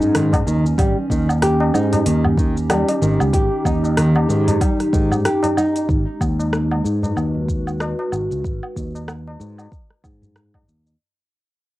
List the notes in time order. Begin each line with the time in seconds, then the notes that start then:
Already playing: G#2 C#4 D#4 B4
0.01 tabla ge, shaker
0.15 D#3, cross-stick, open hi-hat, shaker
0.32 kick, open hi-hat, tabla na, tabla tin, tabla ge, low woodblock
0.46 D#2 D#3, shaker
0.64 tabla tin, shaker
0.78 G#1 G3, kick, open hi-hat, low woodblock, shaker
1.09 D#2 D#3 G4, kick, tabla tin, shaker
1.29 tabla na, low woodblock, shaker
1.42 G4, cross-stick, open hi-hat, shaker
1.60 D#4, tabla na, tabla tin
1.74 G#2 D#4, low woodblock, shaker
1.93 open hi-hat, tabla na, tabla ge, shaker
2.06 D#2 D#3, open hi-hat, shaker
2.25 tabla ge, low woodblock
2.38 D#3, kick, shaker
2.57 shaker
2.70 G3, cross-stick, open hi-hat, tabla na, low woodblock, shaker
2.89 open hi-hat, tabla na, tabla tin
3.01 G#1 D#3, shaker
3.20 C#2, low woodblock, shaker
3.33 G#1 G4, kick, open hi-hat, shaker
3.65 D#2 D#4, kick, tabla tin, low woodblock, shaker
3.84 tabla na, shaker
3.97 D#3, cross-stick, open hi-hat, shaker
4.16 tabla na, tabla tin, low woodblock
4.29 G#2 D#3, shaker
4.48 open hi-hat, tabla na, tabla ge, shaker
4.61 G3, kick, open hi-hat, low woodblock, shaker
4.80 cross-stick, open hi-hat
4.93 G#2 D#3, kick, shaker
5.11 tabla ge, low woodblock, shaker
5.25 G4, cross-stick, open hi-hat, shaker
5.43 open hi-hat, tabla na, tabla tin, tabla ge
5.57 D#4, low woodblock, shaker
5.75 open hi-hat, tabla tin, shaker
5.89 G#1 G#3, kick, shaker
6.21 D#2, kick, low woodblock, shaker
6.28 B4
6.39 tabla na, shaker
6.53 cross-stick, shaker
6.71 tabla na, tabla tin, low woodblock
6.84 G#2 F#4, shaker
7.03 tabla na, tabla ge, shaker
7.16 D#2, low woodblock, shaker
7.35 tabla ge
7.48 kick, shaker
7.67 low woodblock, shaker
7.80 cross-stick, tabla na, shaker
7.99 tabla na, tabla tin
8.12 G#1, low woodblock, shaker
8.31 C#2, shaker
8.44 G#1, kick, shaker
8.63 low woodblock
8.76 D#2, kick, tabla tin, shaker
8.95 tabla na, shaker
9.08 cross-stick, low woodblock, shaker
9.27 tabla na, tabla tin
9.40 G#2, shaker
9.58 tabla na, low woodblock, shaker
9.72 kick, shaker
9.91 cross-stick
10.04 G#2, kick, low woodblock, shaker
10.22 tabla ge, shaker
10.36 cross-stick, shaker
10.54 kick, tabla na, tabla tin, tabla ge, low woodblock
10.68 D#2, shaker
10.86 tabla tin, shaker